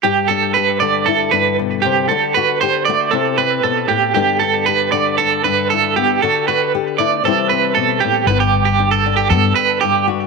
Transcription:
<<
  \new Staff \with { instrumentName = "Clean electric guitar" } { \time 4/4 \key g \major \tempo 4 = 116 g'8 a'8 b'8 d''8 a'8 b'8 r8 g'8 | a'8 b'8 c''8 d''8 a'8 b'8 a'8 g'8 | g'8 a'8 b'8 d''8 a'8 b'8 a'8 g'8 | a'8 b'8 r8 d''8 a'8 b'8 a'8 g'8 |
b'16 g'8 g'8 a'8 g'16 a'8 b'8 g'8 r8 | }
  \new Staff \with { instrumentName = "Nylon-string guitar" } { \time 4/4 \key g \major << { g'8 d'8 g'8 d'8 e'8 d'4. | r8 fis'8 g'8 fis'8 e'8 c'4. | <d b d' g'>8 d'8 g'8 d'4 d'8 e'8 b8 | fis'8 fis'8 g'8 e'16 r16 <e g c' e'>8 c'4. |
b4 d'4 b4. fis'8 | } \\ { g,4. d4 g,8 b,8 c8 | d4. a8 c4 b,8 a,8 | g,4. d4 g,4. | d4. a8 c4 b,8 a,8 |
g,4. d4. g,4 | } >> }
  \new Staff \with { instrumentName = "Fingered electric bass" } { \clef bass \time 4/4 \key g \major r1 | r1 | r1 | r1 |
g,,2 g,8 r4. | }
>>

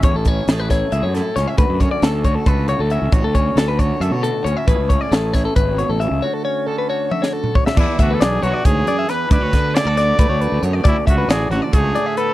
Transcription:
<<
  \new Staff \with { instrumentName = "Clean electric guitar" } { \time 7/8 \key d \lydian \tempo 4 = 136 cis''16 a'16 cis''8 a'16 b'16 cis''8 e''16 cis''16 a'8 cis''16 e''16 | b'8 cis''16 d''16 a'8 cis''16 a'16 b'8 cis''16 a'16 e''8 | cis''16 a'16 cis''8 a'16 b'16 cis''8 e''16 cis''16 a'8 cis''16 e''16 | b'8 cis''16 d''16 a'8 cis''16 a'16 b'8 cis''16 a'16 e''8 |
cis''16 a'16 cis''8 a'16 b'16 cis''8 e''16 cis''16 a'8 cis''16 e''16 | d''8 e''16 b'16 d''8 cis''16 d''16 cis''8 d''16 e''16 b'8 | d''16 cis''16 b'8 gis'16 a'16 d''8 b'16 cis''16 b'8 cis''16 d''16 | d''8 e''16 b'16 d''8 cis''16 d''16 cis''8 d''16 e''16 b'8 | }
  \new Staff \with { instrumentName = "Trumpet" } { \time 7/8 \key d \lydian r2. r8 | r2. r8 | r2. r8 | r2. r8 |
r2. r8 | e'8 fis'16. a'32 gis'8 fis'8 gis'4 b'8 | b'4 d''2 r8 | e'8 fis'8 gis'8 fis'8 gis'4 a'8 | }
  \new Staff \with { instrumentName = "Clean electric guitar" } { \time 7/8 \key d \lydian << { e'8 cis'8 gis'8 e'8 gis'8 e'8 cis'8 | fis'8 cis'8 a'8 fis'8 a'8 fis'8 cis'8 | fis'8 cis'8 a'8 fis'8 a'8 fis'8 cis'8 | <a cis' e' gis'>8 cis'8 gis'8 e'2 |
fis'8 cis'8 a'8 fis'2 | d'8 d'8 d'2~ d'8 | e'16 fis'16 b8 e'16 fis'8. a4 b8 | cis'8 cis'8 fis'4 a4 b16 cis'16 | } \\ { a,4 a4. a,4 | d,2~ d,8 a,4 | d,4 d4. a,4 | a,4 a4 a,8 b,8 cis8 |
d,4 d2 d,8 | e,4. e8 gis,8 fis,8 e,8 | d,4. d4 d,4 | d,4. d4 a,4 | } >> }
  \new Staff \with { instrumentName = "Fingered electric bass" } { \clef bass \time 7/8 \key d \lydian e,16 a,,8. a,,4 cis,16 fis,8 r16 cis,16 r16 | d,16 fis,8 r16 d,4 cis,8. d,8 cis,16 | a,,16 d,8. d,4 fis,16 b,8 r16 d,16 r16 | a,,16 cis,8 r16 a,,4 gis,,8. a,,8 cis,16 |
r2. r8 | e,16 r16 d,8 b,,8 b,,16 r16 d,8 r4 | d,16 d,16 d8. d,8. d,16 d,8 d,16 fis,8 | d,16 r16 cis,8 a,,8 a,,16 r16 cis,8 r4 | }
  \new DrumStaff \with { instrumentName = "Drums" } \drummode { \time 7/8 <hh bd>8 <hh bd>8 <hh sn>8 <hh bd sn>8 hh8 <hh sn>8 <hh sn>8 | <hh bd>8 <hh bd>8 <hh sn>8 <hh bd>8 <hh bd>8 hh8 hh8 | <hh bd>8 <hh bd>8 <hh sn>8 <hh bd>8 hh8 hh8 hh8 | <hh bd>8 <hh bd>8 <hh sn>8 <hh bd sn>8 <hh bd>8 hh8 hh8 |
r4 r4 tommh16 sn8 toml16 bd16 sn16 | <cymc bd>8 <hh bd>8 <hh sn>8 hh8 <hh bd>8 hh8 <hh sn>8 | <hh bd>8 <hh bd sn>8 <hh sn>8 <hh sn>8 <hh bd>8 hh8 hh8 | <hh bd>8 <hh bd>8 <hh sn>8 hh8 <hh bd>8 hh8 hh8 | }
>>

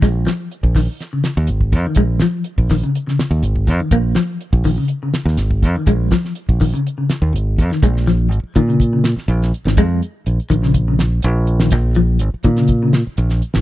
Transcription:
<<
  \new Staff \with { instrumentName = "Clean electric guitar" } { \clef bass \time 4/4 \key bes \minor \tempo 4 = 123 aes8 f8 r8 ees16 r8 des8 r4 ees16 | aes8 f8 r8 ees16 des8 des8 r4 ees16 | bes8 f8 r8 ees16 des8 des8 r4 ees16 | aes8 f8 r8 ees16 des8 des8 r4 ees16 |
aes8 f8 r8 ees16 des8 des8 r4 ees16 | aes8 r4 ees16 des8 des8 r4 ees16 | r8 f8 r8 ees16 des8 des8 r4 ees16 | }
  \new Staff \with { instrumentName = "Fingered electric bass" } { \clef bass \time 4/4 \key bes \minor bes,,8 r8. bes,,8 r4 ees,16 aes,,8 f,16 r16 | bes,,8 r8. bes,,8 r4 ees,16 aes,,8 f,16 r16 | bes,,8 r8. bes,,8 r4 ees,16 aes,,8 f,16 r16 | bes,,8 r8. bes,,8 r4 ees,16 aes,,8 f,16 r16 |
bes,,4 aes,,16 r16 bes,4~ bes,16 r16 bes,,8 r16 aes,,16 | f,8 r8 bes,,16 r16 bes,,4. bes,,4 | bes,,4 aes,,16 r16 bes,4~ bes,16 r16 bes,,8 r16 aes,,16 | }
  \new DrumStaff \with { instrumentName = "Drums" } \drummode { \time 4/4 <hh bd sn>8 <hh sn>8 hh16 bd16 <hho bd sn>8 <hh sn>8 <hh sn>8 hh16 bd16 <hh bd>8 | <hh bd>8 <hh sn>8 hh16 bd16 <hho bd sn>16 hh16 hh16 sn16 <hh sn>8 hh16 bd16 <hh bd>8 | <hh bd>8 <hh sn>8 hh16 bd16 <hho bd>8 hh8 <hh sn>16 sn16 <hh sn>16 bd16 <hh bd>8 | <hh bd>8 <hh bd sn>16 sn16 hh16 bd16 <hho bd>16 hh16 hh8 <hh sn>8 hh8 <hh bd>16 sn16 |
<hh bd>16 sn16 <hh sn>8 hh8 <hh bd>16 hh16 <hh bd>8 <hh sn>16 sn16 hh16 <hh sn>16 hh16 sn16 | <hh bd>8 hh8 hh16 hh16 <hh bd>16 sn16 <hh bd>8 <hh sn>8 hh8 hh16 <hh sn>16 | <hh bd sn>8 hh8 hh8 <hh bd>16 <hh sn>16 <hh bd>8 <hh sn>8 hh16 <hh sn>16 hh16 sn16 | }
>>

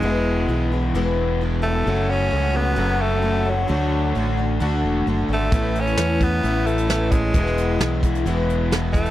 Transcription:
<<
  \new Staff \with { instrumentName = "Twelve-string acoustic guitar" } { \time 4/4 \key e \mixolydian \tempo 4 = 131 <e, b, e gis b e'>4 <e gis b e'>8 <e gis b e'>8 <e, b, e gis b e'>4 <e gis b e'>8 <e gis b e'>8 | <fis, cis fis a cis' fis'>4 <fis a cis' fis'>8 <fis a cis' fis'>8 <fis, cis fis a cis' fis'>4 <fis a cis' fis'>8 <fis a cis' fis'>8 | <d a d' fis'>4 <d a d' fis'>8 <a d' fis'>8 <d a d' fis'>4 <d a d' fis'>8 <a d' fis'>8 | <a, e b cis' e'>4 <e b cis' e'>8 <b cis' e'>8 <a, e b cis' e'>4 <e b cis' e'>8 <b cis' e'>8 |
<e, b, e gis b e'>4 <e gis b e'>8 <e gis b e'>8 <e, b, e gis b e'>4 <e gis b e'>8 <e gis b e'>8 | }
  \new Staff \with { instrumentName = "Tenor saxophone" } { \time 4/4 \key e \mixolydian gis4. r2 a8~ | a8 cis'4 b4 a4 fis8~ | fis4. r2 a8~ | a8 cis'4 b4 a4 gis8~ |
gis4. r2 a8 | }
  \new Staff \with { instrumentName = "Overdriven electric guitar" } { \clef bass \time 4/4 \key e \mixolydian <e, b, e gis b e'>2 <e, b, e gis b e'>2 | <fis, cis fis a cis' fis'>2 <fis, cis fis a cis' fis'>2 | <d a d' fis'>2 <d a d' fis'>2 | <a, e a cis' e'>2 <a, e a cis' e'>2 |
<e, b, e gis b e'>2 <e, b, e gis b e'>2 | }
  \new Staff \with { instrumentName = "Fingered electric bass" } { \clef bass \time 4/4 \key e \mixolydian e,,4 b,,4 e,,2 | fis,,4 cis,4 fis,,2 | d,4 a,,4 d,8 e,,8 fis,,8 gis,,8 | a,,4 e,4 a,,2 |
e,,4 b,,4 e,,2 | }
  \new DrumStaff \with { instrumentName = "Drums" } \drummode { \time 4/4 r4 r4 r4 r4 | r4 r4 r4 r4 | r4 r4 r4 r4 | <hh bd>8 hh16 hh16 <hh sn>8 <hh bd>8 hh8 hh16 hh16 <hh sn>8 <hh bd>8 |
<hh bd>16 sn16 hh8 <hh sn>8 <hh bd>16 hh16 hh8 hh8 <hh sn>8 <hh bd>16 hh16 | }
>>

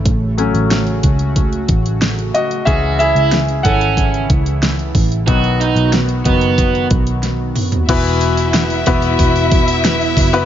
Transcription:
<<
  \new Staff \with { instrumentName = "Violin section" } { \time 4/4 \key e \major \tempo 4 = 92 r1 | r1 | r1 | <e' e''>1 | }
  \new Staff \with { instrumentName = "Grand piano" } { \time 4/4 \key e \major r2. r8 <fis' dis''>8 | <gis' e''>8 <gis' e''>4 <a' fis''>2 r8 | r1 | <b e' fis' b'>4 r8 <b e' fis' b'>4. r8. <b e' fis' b'>16 | }
  \new Staff \with { instrumentName = "Grand piano" } { \clef bass \time 4/4 \key e \major r8 <fis a cis'>2.~ <fis a cis'>8 | <e gis cis'>8 r2. r8 | <dis fis b>4. <dis fis b>8 r2 | e4. r2 r8 | }
  \new Staff \with { instrumentName = "Overdriven electric guitar" } { \time 4/4 \key e \major r1 | fis'8 e'8 r8 cis'4 r4. | fis'8 dis'8 r8 b4 r4. | r1 | }
  \new Staff \with { instrumentName = "Analog synth pad" } { \time 4/4 \key e \major <cis a fis'>1 | <cis e e'>1 | <dis b fis'>1 | <e b fis'>1 | }
  \new Staff \with { instrumentName = "Picked electric bass" } { \clef bass \time 4/4 \key e \major a,,8. a,,8. cis,4 a,,4 r8 | cis,8. cis,8. gis,,4 cis,4 a,,8 | b,,8. b,,8. fis,,4 b,,4 r8 | e,,4. e,,8 e,,4. fis,,8 | }
  \new DrumStaff \with { instrumentName = "Drums" } \drummode { \time 4/4 <hh bd>8 hh16 hh16 <hh sn>16 hh16 <hh bd>16 hh16 <hh bd>16 hh16 <hh bd>16 hh16 <hh sn>16 hh16 hh16 hh16 | <hh bd>8 hh16 hh16 <hh sn>16 hh16 <hh bd>16 hh16 <hh bd>16 hh16 <hh bd>16 hh16 <hh sn>16 hh16 <hho bd>16 hh16 | <hh bd>16 hh16 hh16 hh16 <hh sn>16 hh16 <hh bd>16 hh16 <hh bd>16 hh16 <hh bd>16 hh16 <hh sn>8 <hho toml>16 <hh tomfh>16 | <cymc hho bd>8 hho16 hho16 <hho sn>16 hho16 <hho bd>16 hho16 <hho bd>16 hho16 <hho bd>16 hho16 <hho sn>16 hho16 <hho bd>16 hho16 | }
>>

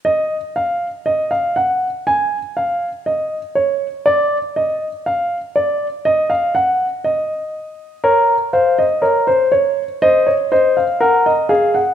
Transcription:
\new Staff \with { instrumentName = "Grand piano" } { \time 4/4 \key ees \minor \tempo 4 = 60 << { ees''8 f''8 ees''16 f''16 ges''8 aes''8 f''8 ees''8 des''8 | d''8 ees''8 f''8 d''8 ees''16 f''16 ges''8 ees''4 | des''8 f''16 ees''16 des''4 c''16 des''16 ees''16 f''16 ges''16 ees''16 f''16 ges''16 | } \\ { r1 | r1 | bes'8 c''8 bes'16 c''16 des''8 ees''8 c''8 bes'8 aes'8 | } >> }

